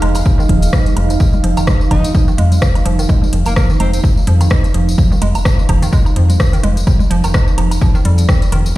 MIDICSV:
0, 0, Header, 1, 6, 480
1, 0, Start_track
1, 0, Key_signature, -4, "minor"
1, 0, Tempo, 472441
1, 1220, Time_signature, 4, 2, 24, 8
1, 8915, End_track
2, 0, Start_track
2, 0, Title_t, "Ambient pad"
2, 0, Program_c, 0, 92
2, 0, Note_on_c, 0, 63, 89
2, 0, Note_on_c, 0, 68, 75
2, 0, Note_on_c, 0, 77, 80
2, 8915, Note_off_c, 0, 63, 0
2, 8915, Note_off_c, 0, 68, 0
2, 8915, Note_off_c, 0, 77, 0
2, 8915, End_track
3, 0, Start_track
3, 0, Title_t, "Alto saxophone"
3, 0, Program_c, 1, 65
3, 1941, Note_on_c, 1, 63, 88
3, 2130, Note_off_c, 1, 63, 0
3, 3519, Note_on_c, 1, 58, 85
3, 3584, Note_off_c, 1, 58, 0
3, 3621, Note_on_c, 1, 58, 75
3, 3709, Note_off_c, 1, 58, 0
3, 3862, Note_on_c, 1, 60, 90
3, 3949, Note_off_c, 1, 60, 0
3, 3998, Note_on_c, 1, 60, 73
3, 4064, Note_off_c, 1, 60, 0
3, 8915, End_track
4, 0, Start_track
4, 0, Title_t, "Synth arpeggio sound"
4, 0, Program_c, 2, 84
4, 20, Note_on_c, 2, 56, 101
4, 88, Note_off_c, 2, 56, 0
4, 261, Note_on_c, 2, 53, 80
4, 328, Note_off_c, 2, 53, 0
4, 397, Note_on_c, 2, 51, 94
4, 448, Note_off_c, 2, 51, 0
4, 501, Note_on_c, 2, 53, 74
4, 602, Note_off_c, 2, 53, 0
4, 741, Note_on_c, 2, 55, 94
4, 808, Note_off_c, 2, 55, 0
4, 981, Note_on_c, 2, 56, 72
4, 1048, Note_off_c, 2, 56, 0
4, 1118, Note_on_c, 2, 53, 69
4, 1148, Note_off_c, 2, 53, 0
4, 1221, Note_on_c, 2, 53, 83
4, 1288, Note_off_c, 2, 53, 0
4, 1460, Note_on_c, 2, 53, 98
4, 1501, Note_off_c, 2, 53, 0
4, 1597, Note_on_c, 2, 51, 98
4, 1648, Note_off_c, 2, 51, 0
4, 1700, Note_on_c, 2, 56, 97
4, 1768, Note_off_c, 2, 56, 0
4, 1941, Note_on_c, 2, 53, 74
4, 2008, Note_off_c, 2, 53, 0
4, 2180, Note_on_c, 2, 53, 108
4, 2221, Note_off_c, 2, 53, 0
4, 2317, Note_on_c, 2, 51, 97
4, 2368, Note_off_c, 2, 51, 0
4, 2420, Note_on_c, 2, 56, 100
4, 2487, Note_off_c, 2, 56, 0
4, 2660, Note_on_c, 2, 53, 77
4, 2728, Note_off_c, 2, 53, 0
4, 2900, Note_on_c, 2, 53, 101
4, 2941, Note_off_c, 2, 53, 0
4, 3037, Note_on_c, 2, 51, 94
4, 3088, Note_off_c, 2, 51, 0
4, 3141, Note_on_c, 2, 56, 99
4, 3208, Note_off_c, 2, 56, 0
4, 3382, Note_on_c, 2, 53, 71
4, 3448, Note_off_c, 2, 53, 0
4, 3621, Note_on_c, 2, 53, 99
4, 3661, Note_off_c, 2, 53, 0
4, 3758, Note_on_c, 2, 51, 98
4, 3809, Note_off_c, 2, 51, 0
4, 3861, Note_on_c, 2, 56, 98
4, 3928, Note_off_c, 2, 56, 0
4, 4101, Note_on_c, 2, 53, 85
4, 4168, Note_off_c, 2, 53, 0
4, 4341, Note_on_c, 2, 53, 107
4, 4381, Note_off_c, 2, 53, 0
4, 4478, Note_on_c, 2, 51, 100
4, 4528, Note_off_c, 2, 51, 0
4, 4581, Note_on_c, 2, 56, 97
4, 4648, Note_off_c, 2, 56, 0
4, 4820, Note_on_c, 2, 53, 77
4, 4888, Note_off_c, 2, 53, 0
4, 5061, Note_on_c, 2, 53, 97
4, 5101, Note_off_c, 2, 53, 0
4, 5198, Note_on_c, 2, 51, 97
4, 5249, Note_off_c, 2, 51, 0
4, 5301, Note_on_c, 2, 56, 102
4, 5368, Note_off_c, 2, 56, 0
4, 5541, Note_on_c, 2, 53, 77
4, 5608, Note_off_c, 2, 53, 0
4, 5781, Note_on_c, 2, 53, 97
4, 5821, Note_off_c, 2, 53, 0
4, 5918, Note_on_c, 2, 51, 102
4, 5968, Note_off_c, 2, 51, 0
4, 6021, Note_on_c, 2, 56, 103
4, 6088, Note_off_c, 2, 56, 0
4, 6261, Note_on_c, 2, 53, 77
4, 6328, Note_off_c, 2, 53, 0
4, 6501, Note_on_c, 2, 53, 99
4, 6541, Note_off_c, 2, 53, 0
4, 6637, Note_on_c, 2, 51, 101
4, 6688, Note_off_c, 2, 51, 0
4, 6740, Note_on_c, 2, 56, 102
4, 6808, Note_off_c, 2, 56, 0
4, 6980, Note_on_c, 2, 53, 78
4, 7048, Note_off_c, 2, 53, 0
4, 7219, Note_on_c, 2, 53, 101
4, 7260, Note_off_c, 2, 53, 0
4, 7356, Note_on_c, 2, 51, 98
4, 7407, Note_off_c, 2, 51, 0
4, 7459, Note_on_c, 2, 56, 99
4, 7527, Note_off_c, 2, 56, 0
4, 7700, Note_on_c, 2, 53, 74
4, 7768, Note_off_c, 2, 53, 0
4, 7939, Note_on_c, 2, 53, 107
4, 7980, Note_off_c, 2, 53, 0
4, 8076, Note_on_c, 2, 51, 93
4, 8127, Note_off_c, 2, 51, 0
4, 8180, Note_on_c, 2, 55, 81
4, 8281, Note_off_c, 2, 55, 0
4, 8419, Note_on_c, 2, 60, 80
4, 8460, Note_off_c, 2, 60, 0
4, 8659, Note_on_c, 2, 51, 102
4, 8727, Note_off_c, 2, 51, 0
4, 8915, End_track
5, 0, Start_track
5, 0, Title_t, "Analog synth bass"
5, 0, Program_c, 3, 38
5, 21, Note_on_c, 3, 29, 94
5, 229, Note_off_c, 3, 29, 0
5, 501, Note_on_c, 3, 27, 94
5, 709, Note_off_c, 3, 27, 0
5, 981, Note_on_c, 3, 29, 90
5, 1189, Note_off_c, 3, 29, 0
5, 1462, Note_on_c, 3, 29, 97
5, 1577, Note_off_c, 3, 29, 0
5, 1598, Note_on_c, 3, 29, 79
5, 1796, Note_off_c, 3, 29, 0
5, 1941, Note_on_c, 3, 29, 91
5, 2149, Note_off_c, 3, 29, 0
5, 2422, Note_on_c, 3, 41, 81
5, 2630, Note_off_c, 3, 41, 0
5, 2901, Note_on_c, 3, 29, 88
5, 3109, Note_off_c, 3, 29, 0
5, 3382, Note_on_c, 3, 29, 99
5, 3497, Note_off_c, 3, 29, 0
5, 3518, Note_on_c, 3, 29, 79
5, 3716, Note_off_c, 3, 29, 0
5, 3860, Note_on_c, 3, 29, 93
5, 4069, Note_off_c, 3, 29, 0
5, 4341, Note_on_c, 3, 41, 77
5, 4549, Note_off_c, 3, 41, 0
5, 4822, Note_on_c, 3, 29, 88
5, 5029, Note_off_c, 3, 29, 0
5, 5301, Note_on_c, 3, 29, 99
5, 5417, Note_off_c, 3, 29, 0
5, 5439, Note_on_c, 3, 29, 78
5, 5636, Note_off_c, 3, 29, 0
5, 5781, Note_on_c, 3, 29, 98
5, 5989, Note_off_c, 3, 29, 0
5, 6261, Note_on_c, 3, 41, 77
5, 6469, Note_off_c, 3, 41, 0
5, 6741, Note_on_c, 3, 29, 92
5, 6949, Note_off_c, 3, 29, 0
5, 7221, Note_on_c, 3, 29, 97
5, 7337, Note_off_c, 3, 29, 0
5, 7358, Note_on_c, 3, 29, 77
5, 7556, Note_off_c, 3, 29, 0
5, 7700, Note_on_c, 3, 29, 95
5, 7909, Note_off_c, 3, 29, 0
5, 8180, Note_on_c, 3, 41, 74
5, 8389, Note_off_c, 3, 41, 0
5, 8659, Note_on_c, 3, 29, 97
5, 8868, Note_off_c, 3, 29, 0
5, 8915, End_track
6, 0, Start_track
6, 0, Title_t, "Drums"
6, 21, Note_on_c, 9, 42, 80
6, 21, Note_on_c, 9, 77, 71
6, 122, Note_off_c, 9, 77, 0
6, 123, Note_off_c, 9, 42, 0
6, 151, Note_on_c, 9, 54, 76
6, 157, Note_on_c, 9, 76, 65
6, 158, Note_on_c, 9, 42, 44
6, 252, Note_off_c, 9, 54, 0
6, 259, Note_off_c, 9, 76, 0
6, 260, Note_off_c, 9, 42, 0
6, 260, Note_on_c, 9, 54, 62
6, 261, Note_on_c, 9, 36, 107
6, 362, Note_off_c, 9, 54, 0
6, 363, Note_off_c, 9, 36, 0
6, 407, Note_on_c, 9, 54, 39
6, 501, Note_on_c, 9, 36, 53
6, 501, Note_on_c, 9, 42, 81
6, 501, Note_on_c, 9, 64, 79
6, 508, Note_off_c, 9, 54, 0
6, 602, Note_off_c, 9, 36, 0
6, 603, Note_off_c, 9, 42, 0
6, 603, Note_off_c, 9, 64, 0
6, 633, Note_on_c, 9, 54, 74
6, 638, Note_on_c, 9, 42, 43
6, 735, Note_off_c, 9, 54, 0
6, 739, Note_off_c, 9, 42, 0
6, 741, Note_on_c, 9, 36, 107
6, 741, Note_on_c, 9, 37, 86
6, 744, Note_on_c, 9, 54, 59
6, 842, Note_off_c, 9, 36, 0
6, 842, Note_off_c, 9, 37, 0
6, 846, Note_off_c, 9, 54, 0
6, 873, Note_on_c, 9, 54, 35
6, 879, Note_on_c, 9, 42, 34
6, 974, Note_off_c, 9, 54, 0
6, 980, Note_off_c, 9, 42, 0
6, 981, Note_on_c, 9, 76, 64
6, 982, Note_on_c, 9, 42, 80
6, 1083, Note_off_c, 9, 42, 0
6, 1083, Note_off_c, 9, 76, 0
6, 1118, Note_on_c, 9, 42, 31
6, 1119, Note_on_c, 9, 54, 68
6, 1219, Note_off_c, 9, 54, 0
6, 1219, Note_on_c, 9, 54, 69
6, 1220, Note_off_c, 9, 42, 0
6, 1221, Note_on_c, 9, 36, 106
6, 1320, Note_off_c, 9, 54, 0
6, 1322, Note_off_c, 9, 36, 0
6, 1350, Note_on_c, 9, 54, 34
6, 1358, Note_on_c, 9, 64, 89
6, 1451, Note_off_c, 9, 54, 0
6, 1460, Note_off_c, 9, 64, 0
6, 1461, Note_on_c, 9, 42, 85
6, 1563, Note_off_c, 9, 42, 0
6, 1595, Note_on_c, 9, 54, 68
6, 1598, Note_on_c, 9, 42, 30
6, 1598, Note_on_c, 9, 77, 74
6, 1697, Note_off_c, 9, 54, 0
6, 1697, Note_on_c, 9, 54, 57
6, 1700, Note_off_c, 9, 42, 0
6, 1700, Note_off_c, 9, 77, 0
6, 1701, Note_on_c, 9, 36, 115
6, 1701, Note_on_c, 9, 37, 94
6, 1798, Note_off_c, 9, 54, 0
6, 1802, Note_off_c, 9, 36, 0
6, 1802, Note_off_c, 9, 37, 0
6, 1839, Note_on_c, 9, 54, 39
6, 1940, Note_off_c, 9, 54, 0
6, 1941, Note_on_c, 9, 36, 59
6, 1941, Note_on_c, 9, 42, 83
6, 1941, Note_on_c, 9, 76, 66
6, 1941, Note_on_c, 9, 77, 80
6, 2042, Note_off_c, 9, 36, 0
6, 2042, Note_off_c, 9, 42, 0
6, 2043, Note_off_c, 9, 76, 0
6, 2043, Note_off_c, 9, 77, 0
6, 2076, Note_on_c, 9, 54, 68
6, 2078, Note_on_c, 9, 42, 42
6, 2177, Note_off_c, 9, 54, 0
6, 2179, Note_off_c, 9, 42, 0
6, 2181, Note_on_c, 9, 36, 115
6, 2181, Note_on_c, 9, 54, 61
6, 2282, Note_off_c, 9, 36, 0
6, 2282, Note_off_c, 9, 54, 0
6, 2314, Note_on_c, 9, 54, 38
6, 2416, Note_off_c, 9, 54, 0
6, 2421, Note_on_c, 9, 42, 88
6, 2523, Note_off_c, 9, 42, 0
6, 2558, Note_on_c, 9, 42, 35
6, 2558, Note_on_c, 9, 64, 77
6, 2561, Note_on_c, 9, 54, 68
6, 2659, Note_off_c, 9, 54, 0
6, 2659, Note_on_c, 9, 54, 69
6, 2660, Note_off_c, 9, 42, 0
6, 2660, Note_off_c, 9, 64, 0
6, 2660, Note_on_c, 9, 36, 110
6, 2661, Note_on_c, 9, 37, 94
6, 2760, Note_off_c, 9, 54, 0
6, 2762, Note_off_c, 9, 36, 0
6, 2762, Note_off_c, 9, 37, 0
6, 2798, Note_on_c, 9, 42, 32
6, 2799, Note_on_c, 9, 76, 60
6, 2805, Note_on_c, 9, 54, 39
6, 2900, Note_off_c, 9, 42, 0
6, 2900, Note_off_c, 9, 76, 0
6, 2901, Note_on_c, 9, 42, 86
6, 2902, Note_on_c, 9, 64, 76
6, 2906, Note_off_c, 9, 54, 0
6, 3003, Note_off_c, 9, 42, 0
6, 3003, Note_off_c, 9, 64, 0
6, 3038, Note_on_c, 9, 42, 29
6, 3039, Note_on_c, 9, 54, 73
6, 3140, Note_off_c, 9, 42, 0
6, 3141, Note_off_c, 9, 54, 0
6, 3141, Note_on_c, 9, 36, 112
6, 3145, Note_on_c, 9, 54, 65
6, 3242, Note_off_c, 9, 36, 0
6, 3246, Note_off_c, 9, 54, 0
6, 3279, Note_on_c, 9, 64, 95
6, 3288, Note_on_c, 9, 54, 40
6, 3381, Note_off_c, 9, 64, 0
6, 3381, Note_on_c, 9, 42, 91
6, 3390, Note_off_c, 9, 54, 0
6, 3482, Note_off_c, 9, 42, 0
6, 3512, Note_on_c, 9, 54, 69
6, 3518, Note_on_c, 9, 42, 32
6, 3518, Note_on_c, 9, 77, 78
6, 3613, Note_off_c, 9, 54, 0
6, 3620, Note_off_c, 9, 42, 0
6, 3620, Note_off_c, 9, 77, 0
6, 3621, Note_on_c, 9, 36, 111
6, 3621, Note_on_c, 9, 37, 92
6, 3622, Note_on_c, 9, 76, 64
6, 3630, Note_on_c, 9, 54, 57
6, 3723, Note_off_c, 9, 36, 0
6, 3723, Note_off_c, 9, 37, 0
6, 3723, Note_off_c, 9, 76, 0
6, 3731, Note_off_c, 9, 54, 0
6, 3757, Note_on_c, 9, 54, 39
6, 3858, Note_off_c, 9, 54, 0
6, 3861, Note_on_c, 9, 42, 84
6, 3862, Note_on_c, 9, 77, 83
6, 3962, Note_off_c, 9, 42, 0
6, 3964, Note_off_c, 9, 77, 0
6, 3997, Note_on_c, 9, 42, 43
6, 3998, Note_on_c, 9, 54, 74
6, 4099, Note_off_c, 9, 42, 0
6, 4099, Note_off_c, 9, 54, 0
6, 4101, Note_on_c, 9, 36, 114
6, 4111, Note_on_c, 9, 54, 64
6, 4202, Note_off_c, 9, 36, 0
6, 4213, Note_off_c, 9, 54, 0
6, 4239, Note_on_c, 9, 54, 40
6, 4340, Note_on_c, 9, 42, 94
6, 4341, Note_off_c, 9, 54, 0
6, 4341, Note_on_c, 9, 64, 80
6, 4442, Note_off_c, 9, 42, 0
6, 4443, Note_off_c, 9, 64, 0
6, 4477, Note_on_c, 9, 42, 40
6, 4478, Note_on_c, 9, 76, 62
6, 4480, Note_on_c, 9, 54, 72
6, 4574, Note_off_c, 9, 54, 0
6, 4574, Note_on_c, 9, 54, 62
6, 4579, Note_off_c, 9, 42, 0
6, 4579, Note_off_c, 9, 76, 0
6, 4580, Note_on_c, 9, 37, 95
6, 4581, Note_on_c, 9, 36, 114
6, 4675, Note_off_c, 9, 54, 0
6, 4682, Note_off_c, 9, 36, 0
6, 4682, Note_off_c, 9, 37, 0
6, 4717, Note_on_c, 9, 42, 31
6, 4723, Note_on_c, 9, 54, 42
6, 4819, Note_off_c, 9, 42, 0
6, 4820, Note_on_c, 9, 42, 85
6, 4825, Note_off_c, 9, 54, 0
6, 4921, Note_off_c, 9, 42, 0
6, 4965, Note_on_c, 9, 54, 76
6, 5061, Note_on_c, 9, 36, 113
6, 5063, Note_off_c, 9, 54, 0
6, 5063, Note_on_c, 9, 54, 65
6, 5163, Note_off_c, 9, 36, 0
6, 5164, Note_off_c, 9, 54, 0
6, 5198, Note_on_c, 9, 64, 89
6, 5203, Note_on_c, 9, 54, 43
6, 5300, Note_off_c, 9, 64, 0
6, 5300, Note_on_c, 9, 42, 93
6, 5301, Note_on_c, 9, 76, 59
6, 5305, Note_off_c, 9, 54, 0
6, 5402, Note_off_c, 9, 42, 0
6, 5403, Note_off_c, 9, 76, 0
6, 5435, Note_on_c, 9, 54, 72
6, 5437, Note_on_c, 9, 42, 29
6, 5438, Note_on_c, 9, 77, 81
6, 5537, Note_off_c, 9, 54, 0
6, 5539, Note_off_c, 9, 42, 0
6, 5540, Note_off_c, 9, 77, 0
6, 5540, Note_on_c, 9, 37, 91
6, 5541, Note_on_c, 9, 36, 121
6, 5545, Note_on_c, 9, 54, 69
6, 5642, Note_off_c, 9, 37, 0
6, 5643, Note_off_c, 9, 36, 0
6, 5647, Note_off_c, 9, 54, 0
6, 5680, Note_on_c, 9, 54, 39
6, 5780, Note_on_c, 9, 42, 89
6, 5781, Note_on_c, 9, 36, 63
6, 5781, Note_on_c, 9, 77, 80
6, 5782, Note_off_c, 9, 54, 0
6, 5882, Note_off_c, 9, 42, 0
6, 5883, Note_off_c, 9, 36, 0
6, 5883, Note_off_c, 9, 77, 0
6, 5918, Note_on_c, 9, 42, 39
6, 5920, Note_on_c, 9, 54, 80
6, 6019, Note_off_c, 9, 42, 0
6, 6021, Note_on_c, 9, 36, 116
6, 6022, Note_off_c, 9, 54, 0
6, 6024, Note_on_c, 9, 54, 67
6, 6123, Note_off_c, 9, 36, 0
6, 6125, Note_off_c, 9, 54, 0
6, 6158, Note_on_c, 9, 76, 60
6, 6160, Note_on_c, 9, 54, 39
6, 6260, Note_off_c, 9, 76, 0
6, 6261, Note_off_c, 9, 54, 0
6, 6261, Note_on_c, 9, 42, 86
6, 6362, Note_off_c, 9, 42, 0
6, 6397, Note_on_c, 9, 54, 80
6, 6398, Note_on_c, 9, 42, 38
6, 6398, Note_on_c, 9, 64, 79
6, 6498, Note_off_c, 9, 54, 0
6, 6500, Note_off_c, 9, 42, 0
6, 6500, Note_off_c, 9, 64, 0
6, 6501, Note_on_c, 9, 36, 109
6, 6501, Note_on_c, 9, 37, 91
6, 6501, Note_on_c, 9, 54, 64
6, 6602, Note_off_c, 9, 36, 0
6, 6603, Note_off_c, 9, 37, 0
6, 6603, Note_off_c, 9, 54, 0
6, 6638, Note_on_c, 9, 42, 32
6, 6646, Note_on_c, 9, 54, 42
6, 6740, Note_off_c, 9, 42, 0
6, 6741, Note_on_c, 9, 42, 91
6, 6741, Note_on_c, 9, 64, 76
6, 6747, Note_off_c, 9, 54, 0
6, 6842, Note_off_c, 9, 64, 0
6, 6843, Note_off_c, 9, 42, 0
6, 6879, Note_on_c, 9, 42, 27
6, 6880, Note_on_c, 9, 54, 70
6, 6979, Note_off_c, 9, 54, 0
6, 6979, Note_on_c, 9, 54, 65
6, 6980, Note_off_c, 9, 42, 0
6, 6981, Note_on_c, 9, 36, 113
6, 6981, Note_on_c, 9, 76, 60
6, 7081, Note_off_c, 9, 54, 0
6, 7082, Note_off_c, 9, 36, 0
6, 7082, Note_off_c, 9, 76, 0
6, 7113, Note_on_c, 9, 54, 40
6, 7117, Note_on_c, 9, 64, 88
6, 7214, Note_off_c, 9, 54, 0
6, 7219, Note_off_c, 9, 64, 0
6, 7221, Note_on_c, 9, 42, 93
6, 7323, Note_off_c, 9, 42, 0
6, 7353, Note_on_c, 9, 54, 81
6, 7358, Note_on_c, 9, 42, 27
6, 7358, Note_on_c, 9, 77, 77
6, 7455, Note_off_c, 9, 54, 0
6, 7457, Note_on_c, 9, 54, 65
6, 7459, Note_off_c, 9, 42, 0
6, 7459, Note_off_c, 9, 77, 0
6, 7460, Note_on_c, 9, 36, 122
6, 7460, Note_on_c, 9, 37, 86
6, 7559, Note_off_c, 9, 54, 0
6, 7562, Note_off_c, 9, 36, 0
6, 7562, Note_off_c, 9, 37, 0
6, 7596, Note_on_c, 9, 54, 38
6, 7698, Note_off_c, 9, 54, 0
6, 7700, Note_on_c, 9, 42, 89
6, 7700, Note_on_c, 9, 77, 79
6, 7802, Note_off_c, 9, 42, 0
6, 7802, Note_off_c, 9, 77, 0
6, 7837, Note_on_c, 9, 42, 41
6, 7837, Note_on_c, 9, 76, 62
6, 7838, Note_on_c, 9, 54, 77
6, 7939, Note_off_c, 9, 42, 0
6, 7939, Note_off_c, 9, 76, 0
6, 7940, Note_off_c, 9, 54, 0
6, 7940, Note_on_c, 9, 36, 113
6, 7946, Note_on_c, 9, 54, 64
6, 8042, Note_off_c, 9, 36, 0
6, 8047, Note_off_c, 9, 54, 0
6, 8078, Note_on_c, 9, 54, 40
6, 8179, Note_off_c, 9, 54, 0
6, 8179, Note_on_c, 9, 42, 91
6, 8180, Note_on_c, 9, 64, 77
6, 8281, Note_off_c, 9, 42, 0
6, 8281, Note_off_c, 9, 64, 0
6, 8311, Note_on_c, 9, 54, 71
6, 8316, Note_on_c, 9, 42, 41
6, 8412, Note_off_c, 9, 54, 0
6, 8418, Note_off_c, 9, 42, 0
6, 8419, Note_on_c, 9, 37, 86
6, 8420, Note_on_c, 9, 36, 120
6, 8424, Note_on_c, 9, 54, 58
6, 8521, Note_off_c, 9, 36, 0
6, 8521, Note_off_c, 9, 37, 0
6, 8525, Note_off_c, 9, 54, 0
6, 8556, Note_on_c, 9, 42, 31
6, 8556, Note_on_c, 9, 54, 38
6, 8657, Note_off_c, 9, 42, 0
6, 8657, Note_off_c, 9, 54, 0
6, 8659, Note_on_c, 9, 42, 89
6, 8660, Note_on_c, 9, 76, 60
6, 8761, Note_off_c, 9, 42, 0
6, 8762, Note_off_c, 9, 76, 0
6, 8797, Note_on_c, 9, 54, 81
6, 8899, Note_off_c, 9, 54, 0
6, 8915, End_track
0, 0, End_of_file